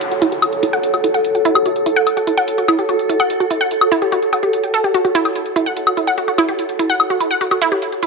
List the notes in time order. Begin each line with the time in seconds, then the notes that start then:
Already playing: F#4 A4 C#5 F#5, downlifter
0.01 closed hi-hat
0.11 F#4, closed hi-hat
0.22 E4, closed hi-hat
0.32 G4, closed hi-hat
0.42 F#4, closed hi-hat, high woodblock
0.53 closed hi-hat
0.63 E4, closed hi-hat
0.73 F#5, closed hi-hat
0.83 closed hi-hat
0.94 F#4, closed hi-hat, high woodblock
1.04 E4, closed hi-hat
1.14 F#5, closed hi-hat
1.25 closed hi-hat
1.35 F#4, closed hi-hat
1.45 E4, closed hi-hat
1.55 G4, closed hi-hat, high woodblock
1.66 F#4, closed hi-hat
1.76 closed hi-hat
1.86 E4, closed hi-hat
1.96 F#5, closed hi-hat
2.07 closed hi-hat, high woodblock
2.17 F#4, closed hi-hat
2.27 E4, closed hi-hat
2.38 F#5, closed hi-hat
2.48 closed hi-hat
2.58 F#4, closed hi-hat
2.68 E4, closed hi-hat, high woodblock
2.79 G4, closed hi-hat
2.89 F#4, closed hi-hat
2.99 closed hi-hat
3.09 E4, closed hi-hat
3.20 F#5, closed hi-hat, high woodblock
3.30 closed hi-hat
3.40 F#4, closed hi-hat
3.51 E4, closed hi-hat
3.61 F#5, closed hi-hat
3.71 closed hi-hat
3.81 F#4, closed hi-hat, high woodblock
3.92 E4, closed hi-hat
4.02 G4, closed hi-hat
4.12 F#4, closed hi-hat
4.22 closed hi-hat
4.33 F#5, closed hi-hat, high woodblock
4.43 G4, closed hi-hat
4.53 closed hi-hat
4.64 G5, closed hi-hat
4.74 A4, closed hi-hat
4.84 G4, closed hi-hat
4.94 F#4, closed hi-hat
5.05 F#4, closed hi-hat
5.15 E4, closed hi-hat
5.25 G4, closed hi-hat, high woodblock
5.35 closed hi-hat
5.46 closed hi-hat
5.56 E4, closed hi-hat
5.66 F#5, closed hi-hat
5.77 closed hi-hat
5.87 F#4, closed hi-hat, high woodblock
5.97 E4, closed hi-hat
6.07 F#5, closed hi-hat
6.18 F#4, closed hi-hat
6.28 F#4, closed hi-hat
6.38 E4, closed hi-hat, high woodblock
6.49 G4, closed hi-hat
6.59 closed hi-hat
6.69 closed hi-hat
6.79 E4, closed hi-hat
6.90 F#5, closed hi-hat
7.00 closed hi-hat, high woodblock
7.10 F#4, closed hi-hat
7.20 E4, closed hi-hat
7.31 F#5, closed hi-hat
7.41 F#4, closed hi-hat
7.51 F#4, closed hi-hat, high woodblock
7.62 E4, closed hi-hat
7.72 G4, closed hi-hat
7.82 closed hi-hat
7.92 closed hi-hat
8.03 E4, closed hi-hat